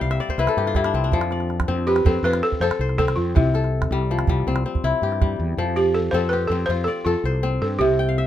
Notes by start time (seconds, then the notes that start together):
Already playing: C3 G3 E4 B4 C5 D5 G5
0.01 C2 F5
0.11 E5, calabash click
0.20 D5, calabash click
0.29 C5, calabash thump
0.38 C2 E4 B4, calabash click
0.47 A4, calabash click
0.57 G2 G4
0.67 F4, calabash click
0.75 G3 E4, calabash thump, calabash click
0.84 D4, calabash click
0.94 C2 C4, calabash click
1.04 D4
1.11 F2 F3, calabash thump
1.21 calabash click
1.31 D5, calabash click
1.40 calabash click
1.50 calabash click
1.60 calabash thump, calabash click
1.68 F2 C4
1.87 G4 B4
1.96 calabash click
2.05 F2 C4 A4, calabash thump
2.23 F2 F4 B4
2.33 calabash click
2.43 A4, calabash click
2.52 calabash thump
2.60 F2 A4 C5, calabash click
2.71 calabash click
2.79 C2 C5
2.89 calabash click
2.98 C4 A4, calabash thump, calabash click
3.08 calabash click
3.16 F2 F4, calabash click
3.35 C2 C3 E4, calabash thump, calabash click
3.54 A4, calabash click
3.64 calabash click
3.82 calabash thump, calabash click
3.91 C2 G3
4.11 F3
4.19 calabash click
4.27 C2 G3, calabash thump
4.47 C2 C4
4.56 calabash click
4.66 C4
4.75 calabash thump
4.84 C2 E4, calabash click
5.02 G2 G4
5.12 calabash click
5.22 G3, calabash thump, calabash click
5.40 E2
5.57 F2 F3
5.76 G4 D5
5.95 A4
6.11 F2 C4 A4 C5
6.29 G4 B4
6.47 F2 A4
6.52 C4
6.66 F2 F4 C5
6.84 A4 D5
7.05 F2 F4 A4
7.24 C2 C5
7.43 C4
7.62 G2 A4
7.79 C2 C3 G4
7.99 G5
8.09 F5
8.18 E5